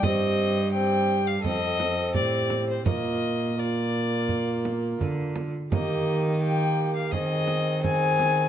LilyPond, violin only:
\new Staff \with { instrumentName = "Violin" } { \time 4/4 \key bes \mixolydian \tempo 4 = 85 ees''4 g''8. f''16 ees''4 d''8. c''16 | ees''4 d''2 r4 | ees''4 g''8. f''16 ees''4 aes''4 | }